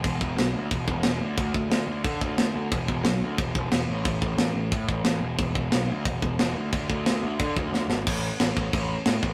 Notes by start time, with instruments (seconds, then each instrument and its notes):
0.04 picked electric bass E1, kick, crash
0.21 picked electric bass E1, kick
0.38 picked electric bass B1, snare, crash
0.54 picked electric bass D2
0.71 picked electric bass E1, kick, crash
0.88 picked electric bass E1, kick
1.03 picked electric bass E1, snare, crash
1.21 picked electric bass D2
1.37 picked electric bass D2, kick, crash
1.54 picked electric bass D2, kick
1.70 picked electric bass D2, snare, crash
1.87 picked electric bass D2
2.04 picked electric bass D3, kick, crash
2.21 picked electric bass D2, kick
2.38 picked electric bass D2, snare, crash
2.55 picked electric bass D2
2.72 picked electric bass E1, kick, crash
2.88 picked electric bass E1, kick
3.05 picked electric bass B1, snare, crash
3.22 picked electric bass D2
3.38 picked electric bass E1, kick, crash
3.55 picked electric bass E1, kick
3.71 picked electric bass E1, snare, crash
3.88 picked electric bass A1
4.05 picked electric bass A1, kick, crash
4.22 picked electric bass A1, kick
4.37 picked electric bass A1, snare, crash
4.54 picked electric bass A1
4.72 picked electric bass A2, kick, crash
4.89 picked electric bass A1, kick
5.04 picked electric bass A1, snare, crash
5.21 picked electric bass E1
5.39 picked electric bass E1, kick, crash
5.55 picked electric bass E1, kick
5.72 picked electric bass B1, snare, crash
5.90 picked electric bass D2
6.05 picked electric bass E1, kick, crash
6.22 picked electric bass E1, kick
6.39 picked electric bass E1, snare, crash
6.56 picked electric bass D2
6.72 picked electric bass D2, kick, crash
6.90 picked electric bass D2, kick
7.06 picked electric bass D2, snare, crash
7.23 picked electric bass D2
7.39 picked electric bass D3, kick, crash
7.57 picked electric bass D2, kick
7.73 picked electric bass D2, snare
7.88 picked electric bass G#1, snare
8.07 picked electric bass A1, kick, crash
8.40 picked electric bass A1, snare, crash
8.57 picked electric bass A1, kick
8.73 picked electric bass A1, kick, crash
9.06 picked electric bass A2, snare, crash
9.23 picked electric bass A1, kick